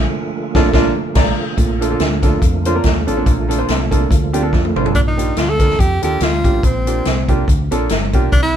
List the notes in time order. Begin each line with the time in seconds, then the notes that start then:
Already playing: D3 F3 A3 A#3 F4
0.55 A#1 A#3 D4 F4 A4, kick, snare
0.73 A#1 A#3 D4 F4, kick, snare
1.15 A#1 D5 A#5, kick, snare, crash
1.57 A#1 A#2 D3 F3 A3 A#3 F4, kick, closed hi-hat
1.81 A#3 D4 F4 A4, closed hi-hat
1.91 A#3 D4 F4 A4
2.00 D2, snare, closed hi-hat
2.23 A#3 D4 F4 A4, kick, snare, closed hi-hat
2.42 F2, kick, closed hi-hat
2.65 A#3 D4 F4 C5, closed hi-hat
2.75 A#3 D4 F4 A#4
2.84 D#2, kick, snare, closed hi-hat
3.07 A1 A#3 D4 F4 A4, closed hi-hat
3.17 A#3 D4 F4 A4
3.26 A#1 A#2, kick, closed hi-hat
3.48 A#3 D4 F4 A4, closed hi-hat
3.58 A#3 D4 F4 C5
3.68 C2, snare, closed hi-hat
3.91 A#3 D4 F4 A4, kick, closed hi-hat
4.11 D2, kick, closed hi-hat
4.33 A#3 D4 F4 G4, closed hi-hat
4.42 A#3 D4 F4 A4
4.53 F2, kick, snare
4.65 high tom
4.76 A1 A#3 D4 F4 C5, mid tom
4.85 A#3 D4 F4 A4, floor tom
4.94 A#1 A#2 D4, kick, closed hi-hat
5.08 D#4
5.17 A#3 D4 F4 G4, closed hi-hat
5.37 D2 F4, snare, closed hi-hat
5.50 A4
5.59 A#3 D4 F4 A#4, kick, snare, closed hi-hat
5.70 snare
5.79 F2 G4, kick, closed hi-hat
6.02 D#2 A#3 D4 F4 G4 A4, closed hi-hat
6.20 D2 F4, snare, closed hi-hat
6.44 A1 A#3 D4 F4 G4, kick, closed hi-hat
6.63 A#1 A#2 C4, kick, closed hi-hat
6.87 A#3 D4 F4 G4, closed hi-hat
7.05 C2, snare, closed hi-hat
7.29 A#3 D4 F4 G4, kick, closed hi-hat
7.48 D2, kick, closed hi-hat
7.71 A#1 A#3 D4 F4 A4, closed hi-hat
7.89 G1, snare, closed hi-hat
8.13 B1 A#3 D4 F4 G4, kick, closed hi-hat
8.32 C2 C3 D4, kick, closed hi-hat
8.43 E4